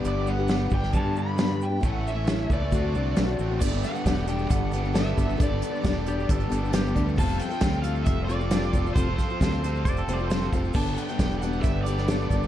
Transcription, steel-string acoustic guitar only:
X:1
M:4/4
L:1/16
Q:1/4=135
K:D
V:1 name="Steel-string acoustic guitar"
[G,,D,G,B,DG]2 [G,B,D] [G,B,DG] [G,,D,G,B,DG]2 [G,B,DG]3 [G,B,DG] [G,B,DG]2 [G,,D,G,B,DG] [G,B,DG]2 [G,B,DG] | [A,,E,A,CE]3 [A,CE] [A,,E,A,CE]2 [E,A,CE] [A,CE] [D,A,=CF] [A,CF] [D,A,CF]2 [D,A,CF] [A,CF]2 [A,CF] | [K:G] [G,B,DA] [B,DA]2 [B,DA] [G,B,DA]2 [G,B,DA]4 [G,B,DA] [B,DA] [G,B,DA]2 [G,B,DA] [B,DA] | [G,B,DA] [B,DA]2 [B,DA] [G,B,DA]2 [G,B,DA]4 [G,B,DA] [B,DA] [G,B,DA]2 [G,B,DA] [B,DA] |
[=F,G,C=FA]3 [CFA] [F,G,CFA]2 [G,CFA]4 [G,CFA] [CFA] [F,G,CFA]2 [G,CFA] [CFA] | [=F,G,C=FA] [CFA]2 [CFA] [F,G,CFA]2 [G,CFA]4 [G,CFA] [CFA] [F,G,CFA]2 [G,CFA] [CFA] | [G,B,DA]3 [B,DA] [G,B,DA]2 [G,B,DA]4 [G,B,DA] [B,DA] [G,B,DA]2 [G,B,DA] [B,A] |]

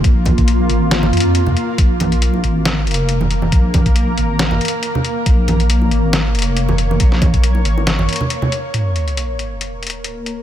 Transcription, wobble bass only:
X:1
M:4/4
L:1/8
Q:"Swing 16ths" 1/4=138
K:Bbm
V:1 name="Wobble bass" clef=bass
B,,,3 A,,,2 F,,2 z | B,,,3 A,,,2 F,,,3 | B,,,3 A,,,2 z3 | B,,,3 A,,,2 F,,,3 |
B,,,3 A,,,2 z3 | z8 |]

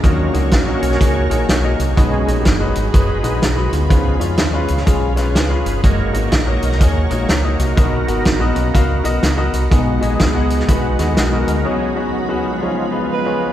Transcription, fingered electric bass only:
X:1
M:4/4
L:1/8
Q:"Swing" 1/4=124
K:Blyd
V:1 name="Fingered electric bass" clef=bass
D,, C,, A,,, B,,, C,, A,,, B,,, ^B,,, | B,,, A,,, F,,, G,,, F,,, A,,, B,,, =D,, | C,, E,, D,, C,, B,,,2 C,, =G,,, | F,,, G,,, A,,, B,,, D,, A,,, C,, ^B,,, |
B,,, G,,, A,,, B,,, C,, B,,, C,, ^B,,, | B,,, A,,, C,,2 B,,, D,, B,,, =D,, | z8 |]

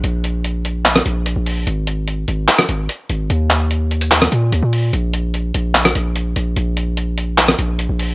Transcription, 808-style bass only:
X:1
M:4/4
L:1/16
Q:1/4=147
K:Ebmix
V:1 name="808-style bass" clef=bass
B,,,8- B,,,2 B,,,3 B,,,3 | A,,,6 A,,,2 z2 A,,,2 z2 A,,,2 | E,,8- E,,2 B,,2 E,, B,,3 | B,,,6 B,,,4 B,,,4 B,,,2 |
B,,,8- B,,,2 B,,,3 B,,,3 |]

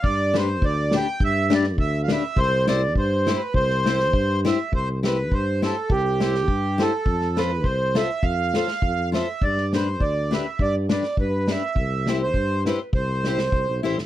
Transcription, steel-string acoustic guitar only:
X:1
M:2/4
L:1/8
Q:"Swing" 1/4=102
K:C
V:1 name="Steel-string acoustic guitar"
z [DGB] z [DGB] | z [DGB] z [DGB] | z [EGc] z [EGc] | z [EGc] z [EGc] |
z [EGc] z [EGc] | z [EGc] z [EGc] | z [FAc] z [FAc] | z [FAc] z [FAc] |
z [DGB] z [DGB] | z [DGB] z [DGB] | z [EGc] z [EGc] | z [EGc] z [EGc] |]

